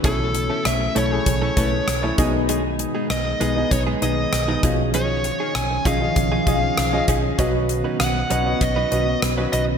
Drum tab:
HH |xxxxxxxx|xxxxxxxx|xxxxxxxx|xxxxxxxx|
SD |--r---r-|--r---r-|--r---r-|--r---r-|
BD |o---oo-o|----o--o|---ooo-o|o---o---|